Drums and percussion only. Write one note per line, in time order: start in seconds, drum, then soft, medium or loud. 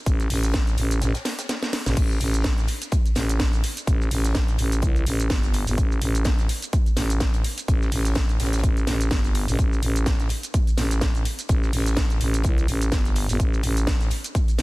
0.06 kick loud
0.06 closed hi-hat medium
0.06 shaker medium
0.20 snare soft
0.20 closed hi-hat soft
0.20 shaker soft
0.30 open hi-hat loud
0.30 open hi-hat medium
0.43 snare medium
0.43 closed hi-hat medium
0.43 shaker medium
0.54 kick loud
0.54 snare loud
0.54 closed hi-hat medium
0.54 shaker medium
0.67 snare soft
0.67 closed hi-hat soft
0.67 shaker soft
0.78 closed hi-hat medium
0.78 open hi-hat loud
0.91 closed hi-hat medium
0.91 closed hi-hat soft
0.91 shaker medium
1.02 snare loud
1.02 closed hi-hat medium
1.02 shaker medium
1.15 snare loud
1.15 closed hi-hat medium
1.15 closed hi-hat soft
1.15 shaker soft
1.25 snare loud
1.25 snare medium
1.25 closed hi-hat medium
1.25 open hi-hat loud
1.39 snare loud
1.39 closed hi-hat medium
1.39 shaker medium
1.49 snare medium
1.49 snare loud
1.49 closed hi-hat medium
1.49 shaker medium
1.63 snare medium
1.63 snare soft
1.63 closed hi-hat soft
1.63 shaker soft
1.73 snare medium
1.73 closed hi-hat medium
1.73 open hi-hat loud
1.86 snare medium
1.86 open hi-hat medium
1.86 shaker medium
1.97 kick loud
1.97 closed hi-hat medium
1.97 closed hi-hat loud
1.97 crash medium
1.97 shaker medium
2.11 shaker soft
2.21 closed hi-hat medium
2.21 open hi-hat loud
2.34 closed hi-hat medium
2.34 shaker medium
2.44 kick loud
2.44 snare loud
2.44 closed hi-hat medium
2.44 shaker medium
2.58 snare medium
2.58 closed hi-hat soft
2.58 shaker soft
2.68 closed hi-hat medium
2.68 open hi-hat loud
2.82 closed hi-hat soft
2.82 closed hi-hat medium
2.82 shaker medium
2.92 kick loud
2.92 closed hi-hat medium
2.92 shaker medium
3.06 closed hi-hat soft
3.06 shaker soft
3.15 snare medium
3.15 closed hi-hat medium
3.15 open hi-hat loud
3.29 snare medium
3.29 closed hi-hat medium
3.29 shaker medium
3.40 kick loud
3.40 snare loud
3.40 closed hi-hat medium
3.40 shaker medium
3.53 closed hi-hat soft
3.53 shaker soft
3.64 closed hi-hat medium
3.64 open hi-hat loud
3.77 closed hi-hat medium
3.77 shaker medium
3.87 kick loud
3.87 closed hi-hat medium
3.87 shaker medium
4.00 snare soft
4.00 shaker soft
4.11 open hi-hat medium
4.11 open hi-hat loud
4.24 snare medium
4.24 closed hi-hat medium
4.24 shaker medium
4.35 kick loud
4.35 snare loud
4.35 closed hi-hat medium
4.35 shaker medium
4.48 snare soft
4.48 closed hi-hat soft
4.48 shaker soft
4.58 closed hi-hat medium
4.58 open hi-hat loud
4.72 closed hi-hat medium
4.72 closed hi-hat soft
4.72 shaker medium
4.82 kick loud
4.82 closed hi-hat medium
4.82 shaker medium
4.96 closed hi-hat soft
4.96 shaker soft
5.07 closed hi-hat medium
5.07 open hi-hat loud
5.20 closed hi-hat medium
5.20 shaker medium
5.30 kick loud
5.30 snare loud
5.30 closed hi-hat loud
5.30 closed hi-hat medium
5.30 shaker medium
5.43 snare soft
5.43 closed hi-hat soft
5.43 shaker soft
5.54 closed hi-hat medium
5.54 open hi-hat loud
5.67 open hi-hat medium
5.67 shaker medium
5.78 kick loud
5.78 closed hi-hat loud
5.78 closed hi-hat medium
5.78 shaker medium
5.92 shaker soft
6.02 closed hi-hat medium
6.02 open hi-hat loud
6.15 closed hi-hat medium
6.15 shaker medium
6.25 kick loud
6.25 snare loud
6.25 closed hi-hat medium
6.25 shaker medium
6.38 snare medium
6.38 closed hi-hat soft
6.38 shaker soft
6.49 closed hi-hat medium
6.49 open hi-hat loud
6.62 closed hi-hat medium
6.62 closed hi-hat soft
6.62 shaker medium
6.73 kick loud
6.73 closed hi-hat medium
6.73 shaker medium
6.86 closed hi-hat soft
6.86 shaker soft
6.97 snare medium
6.97 closed hi-hat medium
6.97 open hi-hat loud
7.10 closed hi-hat medium
7.10 shaker medium
7.20 kick loud
7.20 snare loud
7.20 closed hi-hat medium
7.20 shaker medium
7.34 closed hi-hat medium
7.34 closed hi-hat soft
7.34 shaker soft
7.44 open hi-hat loud
7.58 closed hi-hat medium
7.58 shaker medium
7.68 kick loud
7.68 closed hi-hat medium
7.68 shaker medium
7.82 snare soft
7.82 shaker soft
7.92 open hi-hat medium
7.92 open hi-hat loud
8.05 snare medium
8.05 closed hi-hat medium
8.05 shaker medium
8.16 kick loud
8.16 snare loud
8.16 closed hi-hat medium
8.16 shaker medium
8.29 snare soft
8.29 closed hi-hat soft
8.29 shaker soft
8.40 snare medium
8.40 closed hi-hat medium
8.40 open hi-hat loud
8.46 snare medium
8.46 closed hi-hat medium
8.53 snare loud
8.53 closed hi-hat medium
8.53 shaker medium
8.58 snare medium
8.58 closed hi-hat medium
8.64 kick loud
8.64 closed hi-hat medium
8.64 shaker medium
8.77 closed hi-hat soft
8.77 shaker soft
8.87 snare medium
8.87 closed hi-hat medium
8.87 open hi-hat loud
9.01 closed hi-hat medium
9.01 shaker medium
9.11 kick loud
9.11 snare loud
9.11 closed hi-hat medium
9.11 shaker medium
9.24 snare soft
9.24 closed hi-hat soft
9.24 shaker soft
9.35 closed hi-hat medium
9.35 open hi-hat loud
9.48 open hi-hat medium
9.48 shaker medium
9.59 kick loud
9.59 closed hi-hat medium
9.59 closed hi-hat loud
9.59 shaker medium
9.73 shaker soft
9.83 closed hi-hat medium
9.83 open hi-hat loud
9.96 closed hi-hat medium
9.96 shaker medium
10.06 kick loud
10.06 snare loud
10.06 closed hi-hat medium
10.06 shaker medium
10.20 snare medium
10.20 closed hi-hat soft
10.20 shaker soft
10.29 closed hi-hat medium
10.29 open hi-hat loud
10.43 closed hi-hat medium
10.43 closed hi-hat soft
10.43 shaker medium
10.54 kick loud
10.54 closed hi-hat loud
10.54 closed hi-hat medium
10.54 shaker medium
10.67 closed hi-hat soft
10.67 shaker soft
10.77 snare medium
10.77 closed hi-hat medium
10.77 open hi-hat loud
10.90 snare medium
10.90 closed hi-hat medium
10.90 shaker medium
11.01 kick loud
11.01 snare loud
11.01 closed hi-hat medium
11.01 shaker medium
11.15 closed hi-hat soft
11.15 shaker soft
11.25 closed hi-hat medium
11.25 open hi-hat loud
11.39 closed hi-hat medium
11.39 shaker medium
11.49 kick loud
11.49 closed hi-hat medium
11.49 shaker medium
11.63 snare soft
11.63 shaker soft
11.73 open hi-hat loud
11.73 open hi-hat medium
11.86 snare medium
11.86 closed hi-hat medium
11.86 shaker medium
11.96 kick loud
11.96 snare loud
11.96 closed hi-hat medium
11.96 shaker medium
12.10 snare soft
12.10 closed hi-hat soft
12.10 shaker soft
12.21 closed hi-hat medium
12.21 open hi-hat loud
12.34 closed hi-hat medium
12.34 closed hi-hat soft
12.34 shaker medium
12.44 kick loud
12.44 closed hi-hat medium
12.44 shaker medium
12.58 closed hi-hat soft
12.58 shaker soft
12.68 closed hi-hat medium
12.68 open hi-hat loud
12.82 closed hi-hat medium
12.82 shaker medium
12.92 kick loud
12.92 snare loud
12.92 closed hi-hat medium
12.92 shaker medium
13.05 snare soft
13.05 closed hi-hat soft
13.05 shaker soft
13.16 closed hi-hat medium
13.16 open hi-hat loud
13.29 open hi-hat medium
13.29 shaker medium
13.40 kick loud
13.40 closed hi-hat medium
13.40 shaker medium
13.54 shaker soft
13.63 closed hi-hat medium
13.63 open hi-hat loud
13.77 closed hi-hat medium
13.77 shaker medium
13.87 kick loud
13.87 snare loud
13.87 closed hi-hat medium
13.87 shaker medium
14.01 snare medium
14.01 closed hi-hat soft
14.01 shaker soft
14.11 closed hi-hat medium
14.11 open hi-hat loud
14.24 closed hi-hat soft
14.24 closed hi-hat medium
14.24 shaker medium
14.35 kick loud
14.35 closed hi-hat medium
14.35 shaker medium
14.48 closed hi-hat soft
14.48 shaker soft
14.59 snare medium
14.59 open hi-hat loud